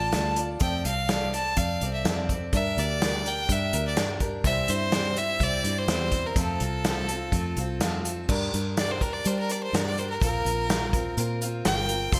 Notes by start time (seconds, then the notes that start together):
Already playing: A1 F4 A4 D5 A5
0.12 D2 D3 A3 F4 A4 D5, snare, closed hi-hat
0.36 F4 A4 D5, closed hi-hat
0.59 F2 F3 A3 C4 A4 D5 G5, kick, closed hi-hat
0.85 C2 C4 A4 D5 F5, closed hi-hat
1.09 F3 A3 C4 A4 D5, snare, closed hi-hat
1.34 C4 A4 D5 A5, closed hi-hat
1.57 F2 A3 C4 A4 D5 F5, kick, closed hi-hat
1.81 C2 C4 A4 D5, closed hi-hat
1.93 E5
2.05 F2 F3 A3 C4 A4 D5, snare, closed hi-hat
2.29 C4 A4 D5, kick, closed hi-hat
2.53 G2 G3 D4 G4 A#4 E5, kick, closed hi-hat
2.77 D2 D4 G4 A#4 D5, closed hi-hat
3.02 G3 D4 G4 A#4, snare, closed hi-hat
3.25 D4 G4 A#4 G5, closed hi-hat
3.49 G2 G3 D4 G4 A#4 E5, kick, closed hi-hat
3.73 D2 D4 G4 A#4, closed hi-hat
3.87 D5
3.97 G2 G3 D4 G4 A#4, snare, closed hi-hat
4.20 D4 G4 A#4, kick, closed hi-hat
4.44 C2 C3 E3 G3 C4 E4 C5 E5, kick, closed hi-hat
4.68 G2 G3 C4 E4 C5, closed hi-hat
4.92 C3 E3 G3 C4 E4 C5, snare, closed hi-hat
5.16 G3 C4 E4 C5 E5, closed hi-hat
5.39 C2 G3 C4 E4 C5, kick, closed hi-hat
5.43 D5
5.64 G2 G3 C4 E4 C5, closed hi-hat
5.79 C5
5.88 E2 C3 E3 G3 C4 E4 C5, snare, closed hi-hat
6.12 G3 C4 E4 C5, kick, closed hi-hat
6.26 A#4
6.35 F2 F3 A3 C4 F4 A4, kick, closed hi-hat
6.60 C2 C4 F4 A4, closed hi-hat
6.84 F3 A3 C4 F4 A4, snare, closed hi-hat
7.08 C4 F4 A4, closed hi-hat
7.32 F2 A3 C4 F4 A4, kick, closed hi-hat
7.57 C2 C4 F4 A4, closed hi-hat
7.80 F2 F3 A3 C4 F4 A4, snare, closed hi-hat
8.05 C4 F4 A4, closed hi-hat
8.28 G2 G3 D4 G4 A#4, kick, crash
8.53 G2 D4 G4 A#4, closed hi-hat
8.77 G3 D4 G4 A#4 D5, snare, closed hi-hat
8.91 C5
9.01 D4 G4 A#4, kick, closed hi-hat
9.13 D5
9.24 G3 D4 G4 A#4 C5, closed hi-hat
9.39 A#4
9.49 D4 G4 A#4 D5, closed hi-hat
9.63 C5
9.73 G2 G3 D4 G4 A#4, snare, closed hi-hat
9.86 D5
9.98 D4 G4 A#4 C5, closed hi-hat
10.10 A#4
10.21 A#1 A#3 C4 F4 A#4, kick, closed hi-hat
10.45 A#1 C4 F4 A#4, closed hi-hat
10.69 A#3 C4 F4 A#4, snare, closed hi-hat
10.93 C4 F4 A#4, kick, closed hi-hat
11.17 A#2 A#3 C4 F4 A#4, closed hi-hat
11.41 C4 F4 A#4, closed hi-hat
11.65 G1 A#3 C4 F4 A#4 G5, snare, closed hi-hat
11.89 C4 F4 A#4, closed hi-hat
12.12 F1 F3 G3 C4 F4 A4 C6, kick, closed hi-hat